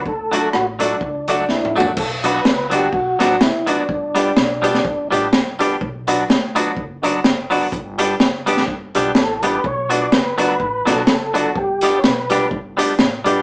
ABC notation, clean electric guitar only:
X:1
M:4/4
L:1/8
Q:"Swing" 1/4=125
K:Bm
V:1 name="Clean electric guitar"
z [F,A,DF] z [F,A,DF] z [F,A,DF] z [F,A,DF] | z [F,B,DF] z [F,B,DF] z [F,B,DF] z [F,B,DF] | z [G,B,DG] z [G,B,DG] z [G,B,DG] z [G,B,DG] | z [F,B,DF] z [F,B,DF] z [F,B,DF] z [F,B,DF] |
z [G,B,DG] z [G,B,DG] z [G,B,DG] z [G,B,DG] | z [F,B,DF] z [F,B,DF] z [F,B,DF] z [F,B,DF] | z [G,B,DG] z [G,B,DG] z [G,B,DG] z [G,B,DG] |]